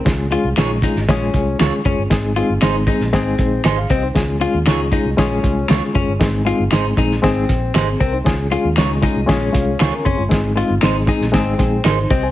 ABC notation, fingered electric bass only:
X:1
M:4/4
L:1/16
Q:1/4=117
K:Ab
V:1 name="Fingered electric bass" clef=bass
D,,3 C,, B,,,3 A,,, B,,,2 C,,2 D,, z _G,,, =G,,, | A,,,3 G,,, A,,,3 B,,, A,,,2 B,,,2 A,,,2 C,,2 | D,,3 E,, D,,3 C,, B,,,2 C,,2 D,, z _G,,, =G,,, | A,,,3 G,,, A,,,2 B,,,2 A,,,2 B,,,2 A,,,2 C,,2 |
D,,3 E,, z3 C,, B,,,2 C,,2 D,, z _G,,, =G,,, | A,,,3 G,,, A,,,3 B,,, A,,,2 B,,,2 A,,,2 C,,2 |]